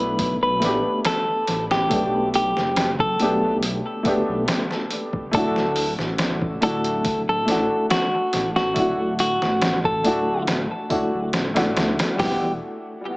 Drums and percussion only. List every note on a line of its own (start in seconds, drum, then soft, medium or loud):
0.19 kick loud
0.19 open hi-hat medium
0.62 snare soft
0.62 open hi-hat medium
1.05 snare loud
1.05 open hi-hat medium
1.47 snare soft
1.47 open hi-hat medium
1.71 snare medium
1.91 kick loud
1.91 open hi-hat medium
2.34 open hi-hat medium
2.57 snare soft
2.76 snare loud
2.76 open hi-hat medium
2.99 kick medium
3.20 open hi-hat medium
3.63 open hi-hat medium
4.05 kick loud
4.05 open hi-hat medium
4.48 snare loud
4.48 open hi-hat medium
4.71 snare soft
4.91 open hi-hat medium
5.13 kick medium
5.33 kick loud
5.33 open hi-hat medium
5.56 snare soft
5.76 open hi-hat medium
5.99 snare soft
6.18 snare loud
6.18 open hi-hat loud
6.42 kick loud
6.62 open hi-hat medium
6.84 closed hi-hat soft
7.05 kick loud
7.05 open hi-hat medium
7.48 snare soft
7.48 open hi-hat medium
7.90 snare loud
7.90 open hi-hat loud
8.33 snare soft
8.33 open hi-hat medium
8.56 snare medium
8.76 kick loud
8.76 open hi-hat medium
9.19 open hi-hat medium
9.42 snare soft
9.62 snare loud
9.62 open hi-hat medium
9.84 kick loud
10.05 open hi-hat medium
10.47 snare loud
10.47 open hi-hat medium
10.90 kick loud
10.90 open hi-hat medium
11.33 snare loud
11.33 open hi-hat medium
11.56 snare loud
11.56 open hi-hat medium
11.77 snare loud
11.77 open hi-hat medium
11.99 snare loud
11.99 open hi-hat medium
12.19 kick loud
12.19 snare loud
12.19 open hi-hat loud